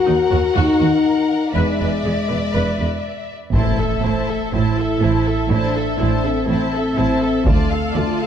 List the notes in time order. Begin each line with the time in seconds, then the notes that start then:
Already playing: F#4 A#4 F#5
0.06 D#2 D#4
0.31 D#2 F#4
0.55 D#2 D#4 F#4
0.80 D#2 F#4
1.54 E1 E2 G#3 B4 D5 E5
1.80 E1 E2 B4
2.05 E1 E2 G#4
2.28 E1 E2 B4
2.54 E1 E2 B4
2.79 E1 E2 B4
3.53 A1 A2 A3 E4 C5 A5, taiko, impact
3.78 A4 E5
4.03 A1 A2 E4 C5 A5
4.29 A4 E5
4.53 A1 A2 E4 C5 A5
4.78 A4 E5
5.02 A1 A2 E4 C5 A5
5.26 A4 E5
5.51 A1 A2 D4 E4 C5 A5
5.76 A4 E5
5.99 A1 A2 E4 C5 A5
6.25 C4 A4 E5
6.48 A1 A2 E4 C5 A5
6.73 A4 E5
6.97 A1 A2 E4 C5 A5
7.22 A4 E5
7.46 D2 A3 F4 D5 A5, taiko
7.70 A4 F5
7.94 D2 F4 D5 A5
8.18 A4 F5